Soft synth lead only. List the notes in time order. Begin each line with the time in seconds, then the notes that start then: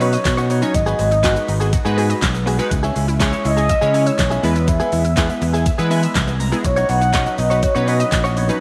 0.01 C#5
0.50 C#5
0.75 D#5
3.45 D#5
4.07 C#5
4.44 B4
4.69 E5
6.65 C#5
6.89 F#5
7.38 D#5
7.63 C#5
7.88 D#5
8.37 C#5